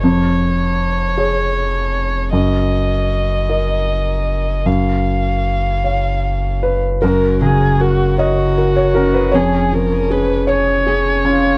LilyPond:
<<
  \new Staff \with { instrumentName = "Felt piano" } { \time 6/8 \key fis \major \tempo 4. = 52 << { r2. | r2. | r2 r8 b'8 | ais'4. dis''8. cis''16 ais'16 b'16 |
cis''4. cis''4 r8 | } \\ { eis,4. <gis' cis''>4. | fis,4. <ais' dis''>4. | fis,4. <cis'' eis''>4. | fis,8 cis8 ais'8 cis''8 ais'8 cis'8 |
eis,8 eis8 gis'4 gis'8 cis'8 | } >> }
  \new Staff \with { instrumentName = "Violin" } { \time 6/8 \key fis \major cis''2. | dis''2. | eis''2~ eis''8. r16 | ais'8 gis'8 fis'8 fis'4. |
gis'8 ais'8 b'8 cis''4. | }
  \new Staff \with { instrumentName = "Harp" } { \time 6/8 \key fis \major r2. | r2. | r2. | fis'16 cis''16 dis''16 cis''16 fis'8 cis''16 cis''16 fis'16 cis''16 ais'16 dis''16 |
cis'16 gis'16 cis''16 gis'16 cis'8 gis'16 gis'16 cis'16 gis'16 eis'16 cis''16 | }
  \new Staff \with { instrumentName = "Sub bass" } { \clef bass \time 6/8 \key fis \major eis,,2. | fis,,2.~ | fis,,2. | fis,,2. |
eis,,2. | }
>>